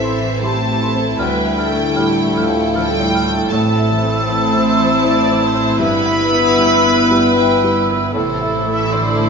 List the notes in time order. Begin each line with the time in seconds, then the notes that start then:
Already playing: A1 A2 E3 C4 E4 A4 C5 E5 G5
0.03 E4 C6
0.20 E3
0.43 A3 E4 G4 A5 C6
0.70 E3
0.81 E4 A4 C6
0.95 C4
1.19 D2 D3 G3 A3 E4 A4 B4 G5 F6
1.45 E5
1.58 D4 E4 A4 F6
1.71 A3
1.96 A2 A3 E4 G4 F6
2.23 A3
2.33 F3 E4 F6
2.49 A2
2.74 F3 G3 E4 A4 D5 G5 F6
3.00 A2
3.14 E4 A4 F6
3.25 A3
3.51 A1 A2 A3 C4 E4 C5 A5 E6
3.78 E5
3.91 E3
4.02 C4
4.28 E3 C4 A4
4.53 C4
4.67 E4 C5
4.79 E3
5.04 E4 D5 E5
5.31 E3
5.43 E4 C5
5.55 C4
5.79 G1 G2 B3 E4 B4 B5 E6
6.06 E5
6.20 G3
6.32 B3
6.58 G3 B3
6.85 B3
6.98 E4
7.11 G3
7.36 G3 E4 E5 G5 E6
7.64 G3
7.76 E4
7.89 B3
8.13 A1 A2 C3 A3 E4 A4 C5 E6
8.41 E5
8.54 E3
8.65 A3
8.73 E3 E5
8.91 D3 E3 A3 C5 D5
9.19 A3